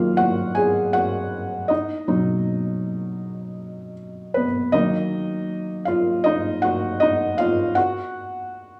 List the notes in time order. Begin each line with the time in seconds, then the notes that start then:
Already playing: D#3 F#3 A#3 D#4 F4 D#5 F5
0.17 F#4 F#5
0.55 G#4 G#5
0.93 F#4 F#5
1.68 D#4 D#5
2.07 B2 F#3 D#4
4.34 B3 B4
4.72 D#3 F#3 A#3 D#4 D#5
5.85 F4 F5
6.24 D#4 D#5
6.62 F#4 F#5
7.00 D#4 D#5
7.38 F4 F5
7.75 F#4 F#5